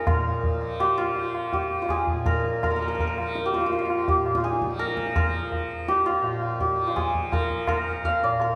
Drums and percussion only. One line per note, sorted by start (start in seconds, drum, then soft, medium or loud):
0.07 tabla na loud
0.07 tabla ge loud
0.44 tabla tin medium
0.44 tabla ge medium
0.61 tabla na medium
0.80 tabla na medium
1.16 tabla tin medium
1.35 tabla na medium
1.52 tabla tin medium
1.52 tabla ge medium
1.89 tabla na medium
1.89 tabla ge medium
2.07 tabla ge medium
2.26 tabla na medium
2.26 tabla ge medium
2.44 tabla te medium
2.63 tabla na medium
2.63 tabla ge medium
2.99 tabla tin medium
2.99 tabla ge medium
3.18 tabla na medium
3.35 tabla te medium
3.54 tabla te medium
3.72 tabla tin medium
3.90 tabla na medium
4.08 tabla tin medium
4.08 tabla ge medium
4.26 tabla na medium
4.35 tabla ke medium
4.44 tabla te medium
4.53 tabla te medium
4.62 tabla ke medium
4.71 tabla te medium
4.80 tabla te medium
4.89 tabla te medium
4.97 tabla ke medium
5.07 tabla te medium
5.16 tabla na loud
5.16 tabla ge medium
5.52 tabla tin medium
5.52 tabla ge medium
5.88 tabla te medium
6.06 tabla te medium
6.24 tabla tin medium
6.42 tabla na medium
6.60 tabla tin medium
6.60 tabla ge medium
6.97 tabla na medium
6.97 tabla ge medium
7.14 tabla ge medium
7.32 tabla na medium
7.32 tabla ge medium
7.50 tabla ge medium
7.67 tabla na loud
7.67 tabla ge medium
8.04 tabla tin medium
8.04 tabla ge medium
8.40 tabla na medium